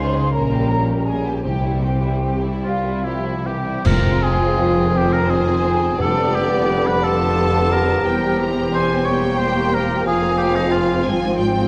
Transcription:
Already playing: double bass section C#2, cello section C#3, french horn section G#3 D#4, violin section C#4 F4 G#4, viola section C5, flute section C6
0.15 violin section G#3 F4 G#4
0.32 double bass section A#1, cello section A#2, french horn section G3 C#4, violin section A#3 C#4 A#4, viola section A#4, flute section A#5
0.51 violin section G3 A#3 G4
0.70 violin section A#3 C#4 A#4
0.87 violin section G3 A#3 G4
1.05 violin section A#3 C#4 A#4, viola section G#4, flute section G#5
1.25 violin section G3 A#3 G4
1.43 double bass section C2, cello section C3, timpani C3, french horn section E3 C4, violin section C4 G4, viola section G4, flute section G5
1.64 violin section G3 E4
1.84 violin section C4 G4
2.03 violin section G3 E4
2.23 violin section C4 G4
2.44 violin section G3 E4
2.64 double bass section C2, cello section C3, french horn section G3, violin section C4 G4, oboe F4, flute section F5
2.84 violin section G3 E4
3.04 french horn section F3, violin section C4 G4, oboe E4, flute section E5
3.25 violin section G3 E4
3.45 french horn section E3, violin section C4 G4, oboe G4, flute section G5
3.67 violin section G3 E4
3.85 double bass section F1, timpani F2, cello section F2, viola section F3 G#3, bassoon C4, violin section C4 F4, clarinet F4, oboe A#4, flute section A#5, concert bass drum, crash
4.22 oboe G#4, flute section G#5
4.58 french horn section F3 C4
4.94 viola section D#3 C4, violin section C4 G#4 C5, oboe G4, flute section G5
5.13 oboe A#4, flute section A#5
5.29 oboe G#4, flute section G#5
5.64 french horn section F3 C4
5.98 double bass section F1, timpani F2, cello section F2, viola section D3 G3, bassoon B3, violin section B3 D4 D5, clarinet G4, oboe A4, flute section A5
6.33 oboe G4, flute section G5
6.67 french horn section G3 B3
6.84 oboe B4, flute section B5
7.01 viola section D3, violin section D4 F4 A5, oboe A4, flute section A5
7.68 french horn section G3 B3, oboe A#4, flute section A#5
8.04 double bass section E1, cello section E2, viola section G3, bassoon C4, violin section C4 G4 G5, clarinet G4
8.39 viola section E3, violin section A#5
8.72 viola section E3, french horn section G3 C4, oboe C5, violin section G#5, flute section C6
9.05 viola section G3 A#3, violin section A#3 G4 G5, oboe C#5, flute section C#6
9.38 oboe C5, flute section C6
9.72 french horn section G3 C4, oboe A#4, flute section A#5
10.05 double bass section F1, cello section F2, viola section F3, bassoon C4, violin section C4 G#4 F5, clarinet F4, oboe G#4, flute section G#5
10.37 oboe G4, flute section G5
10.55 oboe D#4, flute section D#5
10.71 french horn section F3 C4, oboe F4, flute section F5
11.04 double bass section G#1, cello section G#2, viola section C4, violin section F4 G#5
11.37 violin section F4 G5

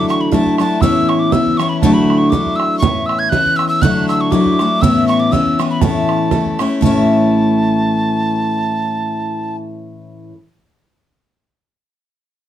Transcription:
Already playing: steel-string acoustic guitar D3 F#3 A3 D4 E4
0.09 tin whistle C#6, bodhran
0.21 tin whistle B5
0.31 steel-string acoustic guitar F#3 A3 D4 E4, tin whistle A5, bodhran
0.46 bodhran
0.58 steel-string acoustic guitar F#3 A3 D4 E4, tin whistle A5, bodhran
0.81 steel-string acoustic guitar A2 E3 B3 C#4 E4, tin whistle E6, bodhran
1.09 tin whistle C#6, bodhran
1.19 tin whistle D6
1.32 steel-string acoustic guitar E3 B3 C#4 E4, tin whistle E6, bodhran
1.46 bodhran
1.57 steel-string acoustic guitar E3 B3 C#4, tin whistle C#6, bodhran
1.61 steel-string acoustic guitar E4
1.69 tin whistle B5
1.81 steel-string acoustic guitar D3 F#3 A3 D4, tin whistle A5, bodhran
1.85 steel-string acoustic guitar E4
1.94 tin whistle B5
2.10 bodhran
2.18 tin whistle C#6
2.30 steel-string acoustic guitar F#3 A3 D4, tin whistle D6, bodhran
2.34 steel-string acoustic guitar E4
2.46 bodhran
2.56 tin whistle E6, bodhran
2.79 steel-string acoustic guitar A2 E3 B3, tin whistle C#6, bodhran
2.83 steel-string acoustic guitar C#4 E4
3.06 tin whistle E6, bodhran
3.19 tin whistle G#6
3.29 steel-string acoustic guitar E3 B3 C#4, tin whistle F#6, bodhran
3.34 steel-string acoustic guitar E4
3.45 bodhran
3.56 tin whistle E6, bodhran
3.69 tin whistle E6
3.82 steel-string acoustic guitar D3 F#3 A3 D4 E4, tin whistle F#6, bodhran
4.09 tin whistle E6, bodhran
4.21 tin whistle C#6
4.31 steel-string acoustic guitar F#3 A3 D4 E4, tin whistle D6, bodhran
4.46 bodhran
4.59 steel-string acoustic guitar F#3 A3 D4 E4, bodhran
4.82 steel-string acoustic guitar A2 E3 B3 C#4 E4, tin whistle E6, bodhran
5.08 tin whistle C#6, bodhran
5.20 tin whistle D6
5.32 steel-string acoustic guitar E3 B3 C#4 E4, tin whistle E6, bodhran
5.46 bodhran
5.59 steel-string acoustic guitar E3 B3 C#4 E4, bodhran
5.71 tin whistle B5
5.81 steel-string acoustic guitar A2 E3 A3 C#4 E4, tin whistle A5, bodhran
6.09 bodhran
6.31 steel-string acoustic guitar E3 A3 C#4 E4, bodhran
6.46 bodhran
6.59 steel-string acoustic guitar E3 A3 C#4 E4, bodhran
6.81 steel-string acoustic guitar A2 E3 A3, tin whistle A5, bodhran
6.85 steel-string acoustic guitar C#4 E4

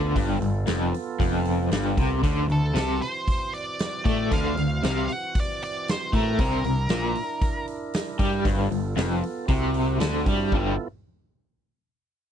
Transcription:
Already playing: picked electric bass D2, overdriven electric guitar D3, tonewheel organ B3 F4 A4
0.16 picked electric bass G1, overdriven electric guitar G2, kick, open hi-hat
0.41 picked electric bass G1, overdriven electric guitar G2, open hi-hat
0.67 picked electric bass F1, overdriven electric guitar F2, snare, open hi-hat
0.94 open hi-hat
1.20 picked electric bass F1, overdriven electric guitar F2, kick, open hi-hat
1.45 open hi-hat
1.71 picked electric bass G1, overdriven electric guitar G2, snare, open hi-hat
1.97 picked electric bass C2, overdriven electric guitar C3, kick, open hi-hat
2.23 picked electric bass D2, overdriven electric guitar D3, tonewheel organ C#4 F4 G4, kick, open hi-hat
2.39 tonewheel organ E3 C4 F#4
2.49 picked electric bass D2, overdriven electric guitar D3, lead electric guitar A4, open hi-hat
2.74 picked electric bass C2, overdriven electric guitar C3, snare, open hi-hat
3.02 lead electric guitar C5, open hi-hat
3.28 kick, open hi-hat
3.54 lead electric guitar D5, open hi-hat
3.79 snare, open hi-hat
4.05 picked electric bass A2, overdriven electric guitar A3, lead electric guitar D5, kick, open hi-hat
4.31 picked electric bass D2, overdriven electric guitar D3, lead electric guitar F5, kick, open hi-hat
4.57 picked electric bass D2, overdriven electric guitar D3, open hi-hat
4.83 picked electric bass C2, overdriven electric guitar C3, lead electric guitar F5, snare, open hi-hat
5.06 lead electric guitar F5, open hi-hat
5.12 lead electric guitar F#5
5.35 kick, open hi-hat
5.40 lead electric guitar D5
5.62 lead electric guitar D5, open hi-hat
5.88 lead electric guitar C5, snare, open hi-hat
6.13 picked electric bass A2, overdriven electric guitar A3, lead electric guitar A#4, kick, open hi-hat
6.37 picked electric bass C2, overdriven electric guitar C3, tonewheel organ D4 E4 A#4, kick, open hi-hat
6.64 picked electric bass C2, overdriven electric guitar C3, open hi-hat
6.89 picked electric bass A#1, overdriven electric guitar A#2, snare, open hi-hat
7.15 open hi-hat
7.42 kick, open hi-hat
7.67 open hi-hat
7.93 snare, open hi-hat
8.19 picked electric bass G2, overdriven electric guitar G3, kick, open hi-hat
8.43 picked electric bass G1, overdriven electric guitar G2, tonewheel organ C4 F#4 A#4, kick, open hi-hat
8.58 tonewheel organ B3 F4 A4
8.71 picked electric bass G1, overdriven electric guitar G2, open hi-hat
8.96 picked electric bass F1, overdriven electric guitar F2, snare, open hi-hat
9.23 open hi-hat
9.46 picked electric bass C2, overdriven electric guitar C3, tonewheel organ C4 E4 F#4, kick, open hi-hat
9.74 open hi-hat
10.00 picked electric bass D2, overdriven electric guitar D3, snare, open hi-hat
10.26 picked electric bass G2, overdriven electric guitar G3, kick, open hi-hat
10.51 picked electric bass G1, overdriven electric guitar G2 D3 G3, tonewheel organ B3 E4 F4 A4, kick

